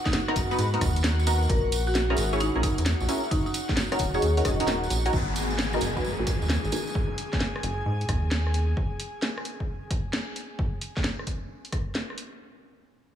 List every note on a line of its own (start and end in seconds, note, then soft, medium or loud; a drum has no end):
0.00 5.14 F#4 medium
0.00 5.14 F#5 medium
0.05 0.10 D#4 medium
0.05 kick loud
0.05 snare medium
0.05 tambourine soft
0.13 0.23 D#4 medium
0.13 snare loud
0.13 closed hi-hat medium
0.13 tambourine medium
0.28 0.34 B3 medium
0.28 0.34 D#4 medium
0.28 0.34 F#4 medium
0.28 0.34 A#4 loud
0.28 cross-stick medium
0.36 0.55 F#1 loud
0.36 kick medium
0.36 open hi-hat loud
0.36 tambourine medium
0.51 0.63 B3 medium
0.51 0.63 D#4 medium
0.51 0.63 F#4 medium
0.51 0.63 B4 medium
0.51 tambourine soft
0.58 0.78 G#2 medium
0.58 closed hi-hat medium
0.58 tambourine medium
0.74 0.80 B3 medium
0.74 0.80 D#4 medium
0.74 0.80 F#4 medium
0.74 0.80 A#4 medium
0.74 open hi-hat medium
0.81 1.47 D#2 loud
0.81 kick loud
0.81 cross-stick medium
0.81 open hi-hat loud
0.81 tambourine medium
0.96 closed hi-hat medium
0.96 tambourine soft
1.04 snare loud
1.04 closed hi-hat medium
1.04 tambourine medium
1.19 tambourine soft
1.27 1.39 B3 medium
1.27 1.39 D#4 medium
1.27 1.39 F#4 medium
1.27 1.39 A#4 medium
1.27 open hi-hat loud
1.27 tambourine loud
1.42 tambourine soft
1.49 2.15 A#1 loud
1.49 1.66 A#4 medium
1.49 kick loud
1.49 closed hi-hat medium
1.49 tambourine medium
1.72 open hi-hat loud
1.72 tambourine loud
1.87 1.98 F#4 medium
1.87 tambourine soft
1.95 snare loud
1.95 closed hi-hat medium
1.95 tambourine medium
2.10 2.16 C#4 medium
2.10 2.16 E4 medium
2.10 2.16 G#4 medium
2.10 2.16 A#4 loud
2.10 cross-stick medium
2.17 2.50 G#1 loud
2.17 open hi-hat loud
2.17 tambourine medium
2.33 2.45 C#4 medium
2.33 2.45 E4 medium
2.33 2.45 G#4 medium
2.33 2.45 C#5 medium
2.33 tambourine soft
2.40 2.57 D#4 medium
2.40 closed hi-hat medium
2.40 tambourine soft
2.55 2.61 A#1 medium
2.55 2.62 C#4 medium
2.55 2.62 E4 medium
2.55 2.62 G#4 medium
2.55 2.62 A#4 medium
2.63 3.01 D#4 medium
2.63 kick loud
2.63 open hi-hat loud
2.63 tambourine medium
2.78 2.94 E2 loud
2.78 closed hi-hat medium
2.78 tambourine soft
2.86 snare loud
2.86 closed hi-hat medium
2.86 tambourine medium
3.00 3.07 A#1 medium
3.00 tambourine soft
3.08 3.21 C#4 medium
3.08 3.21 E4 medium
3.08 3.21 G#4 medium
3.08 3.21 A#4 medium
3.08 open hi-hat loud
3.08 tambourine medium
3.24 tambourine soft
3.31 3.41 D#4 medium
3.31 kick loud
3.31 closed hi-hat medium
3.31 tambourine soft
3.46 3.51 D#4 medium
3.46 tambourine soft
3.54 open hi-hat loud
3.54 tambourine medium
3.69 kick loud
3.69 snare medium
3.69 tambourine soft
3.77 snare loud
3.77 closed hi-hat medium
3.77 tambourine medium
3.92 3.98 C#4 medium
3.92 3.98 D#4 medium
3.92 3.98 F#4 medium
3.92 3.98 A#4 loud
3.92 cross-stick medium
3.92 closed hi-hat soft
3.92 tambourine soft
3.99 4.19 D#1 loud
3.99 kick medium
3.99 open hi-hat loud
3.99 tambourine medium
4.14 4.26 C#4 medium
4.14 4.26 D#4 medium
4.14 4.26 F#4 medium
4.14 4.77 G#4 loud
4.14 4.26 C#5 medium
4.14 tambourine soft
4.22 4.42 D#2 medium
4.22 closed hi-hat medium
4.22 tambourine soft
4.37 4.43 C#4 medium
4.37 4.43 D#4 medium
4.37 4.43 F#4 medium
4.37 4.43 A#4 medium
4.37 open hi-hat medium
4.37 tambourine soft
4.45 4.88 D#1 medium
4.45 4.58 C#4 medium
4.45 4.58 D#4 medium
4.45 4.58 F#4 medium
4.45 4.58 D#5 medium
4.45 kick loud
4.45 cross-stick medium
4.45 open hi-hat loud
4.45 tambourine medium
4.60 4.72 C#4 medium
4.60 4.72 D#4 medium
4.60 4.72 F#4 medium
4.60 4.72 A#4 loud
4.60 closed hi-hat medium
4.60 tambourine soft
4.67 snare loud
4.67 closed hi-hat medium
4.67 tambourine medium
4.83 tambourine soft
4.90 5.10 A#1 loud
4.90 open hi-hat loud
4.90 tambourine medium
5.06 5.12 C#4 medium
5.06 5.12 D#4 medium
5.06 5.12 F#4 medium
5.06 5.12 A#4 medium
5.06 closed hi-hat soft
5.06 tambourine soft
5.13 5.79 G#1 loud
5.13 10.60 G#4 medium
5.13 10.60 G#5 medium
5.13 kick loud
5.13 tambourine medium
5.13 downlifter medium
5.36 open hi-hat loud
5.36 tambourine medium
5.51 tambourine soft
5.59 snare loud
5.59 tambourine soft
5.73 5.80 B3 medium
5.73 5.80 D#4 medium
5.73 5.80 F#4 medium
5.73 5.80 A#4 loud
5.73 cross-stick medium
5.73 tambourine soft
5.81 6.14 F#1 loud
5.81 open hi-hat loud
5.81 tambourine medium
5.97 6.08 B3 medium
5.97 6.08 D#4 medium
5.97 6.08 F#4 medium
5.97 6.08 B4 medium
5.97 kick medium
5.97 tambourine soft
6.04 tambourine medium
6.19 6.25 G#1 medium
6.19 6.26 B3 medium
6.19 6.26 D#4 medium
6.19 6.26 F#4 medium
6.19 6.26 A#4 medium
6.27 kick loud
6.27 open hi-hat loud
6.27 tambourine medium
6.42 6.58 D#2 medium
6.42 tambourine soft
6.50 snare loud
6.50 tambourine soft
6.64 6.71 G#1 medium
6.64 tambourine soft
6.72 6.84 B3 medium
6.72 6.84 D#4 medium
6.72 6.84 F#4 medium
6.72 6.84 A#4 medium
6.72 open hi-hat loud
6.72 tambourine medium
6.87 tambourine soft
6.95 kick loud
7.18 open hi-hat loud
7.33 kick loud
7.33 snare medium
7.40 snare loud
7.56 cross-stick medium
7.63 7.82 F#1 loud
7.63 open hi-hat loud
7.86 8.05 G#2 medium
8.01 open hi-hat medium
8.09 8.74 D#2 loud
8.09 kick loud
8.09 cross-stick medium
8.09 open hi-hat loud
8.31 snare loud
8.47 cross-stick medium
8.54 open hi-hat loud
8.77 kick loud
9.00 open hi-hat loud
9.22 snare loud
9.38 cross-stick medium
9.45 open hi-hat loud
9.60 kick medium
9.91 kick loud
9.91 open hi-hat loud
10.13 snare loud
10.36 open hi-hat medium
10.59 kick loud
10.81 open hi-hat medium
10.97 kick loud
10.97 snare medium
11.04 snare loud
11.19 cross-stick medium
11.27 kick medium
11.27 open hi-hat medium
11.65 open hi-hat medium
11.72 kick loud
11.72 cross-stick medium
11.72 open hi-hat medium
11.95 snare loud
12.10 cross-stick soft
12.18 open hi-hat medium